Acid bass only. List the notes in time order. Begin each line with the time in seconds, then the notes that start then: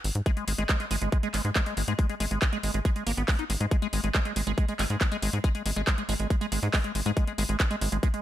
0.26 G#3
0.37 G#3
0.48 G#3
0.58 G#3
0.69 G#3
0.80 G#3
0.91 G#3
1.02 G#3
1.12 G#3
1.23 G#3
1.34 G#3
1.45 G#3
1.56 G#3
1.66 G#3
1.77 G#3
1.88 G#3
1.99 G#3
2.10 G#3
2.20 G#3
2.31 G#3
2.42 G#3
2.53 G#3
2.63 G#3
2.74 G#3
2.85 G#3
2.96 G#3
3.07 A#3
3.17 B3
3.28 G#3
3.39 D#4
3.50 G#3
3.61 G#3
3.71 G#3
3.82 G#3
3.93 G#3
4.04 G#3
4.15 G#3
4.25 G#3
4.36 G#3
4.47 G#3
4.58 G#3
4.69 G#3
4.79 G#3
4.90 G#3
5.01 G#3
5.12 G#3
5.22 G#3
5.33 G#3
5.44 G#3
5.55 G#3
5.66 G#3
5.76 G#3
5.87 G#3
5.98 G#3
6.09 G#3
6.20 G#3
6.30 G#3
6.41 G#3
6.52 G#3
6.63 G#3
6.74 G#3
6.84 G#3
6.95 G#3
7.06 G#3
7.17 G#3
7.27 G#3
7.38 G#3
7.49 G#3
7.60 G#3
7.71 G#3
7.81 G#3
7.92 G#3
8.03 G#3
8.14 G#3